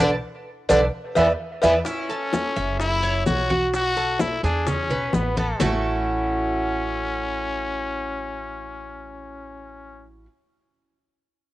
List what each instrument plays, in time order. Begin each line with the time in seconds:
0.00 upright bass B1, trombone D3, cuban tres A4 B4 D5, high conga, maracas
0.69 upright bass B1, trombone D3, trumpet D4, cuban tres A4 B4 D5, cowbell, high conga, maracas
1.15 upright bass E2, trombone E3, trumpet B3, cuban tres B4 D5 E5, cowbell, high conga, maracas
1.62 upright bass E2, trombone E3, trumpet B3, cuban tres B4 D5 E5, cowbell, high conga, maracas
1.85 trumpet C#4, cuban tres E4, high bongo, high conga, maracas
2.09 cuban tres A4, high bongo, high conga, maracas
2.33 high bongo, high conga, maracas
2.56 upright bass F#1, cuban tres E5, high bongo, high conga, maracas
2.80 trumpet E4, high bongo, high conga, maracas
3.03 cuban tres C#5, high bongo, high conga, maracas
3.26 upright bass B1, trumpet F#4, high bongo, low bongo, high conga, maracas
3.50 cuban tres F#4, high conga, maracas
3.74 trumpet F#4, high bongo, high conga, maracas
3.96 cuban tres A4, high bongo, high conga, maracas
4.19 trumpet E4, high bongo, high conga, maracas
4.43 upright bass E2, trumpet D4, cuban tres G#4, high bongo, high conga, maracas
4.67 trumpet C#4, high bongo, high conga, low conga, maracas
4.90 upright bass B1, cuban tres B4, high bongo, high conga, low conga, maracas
5.13 upright bass A1, trumpet B3, high bongo, low bongo, high conga, maracas
5.37 trumpet B3, cuban tres A4, high conga, maracas
5.60 upright bass A1, cuban tres A3 E4 F#4, trumpet C#4, low bongo, low conga, maracas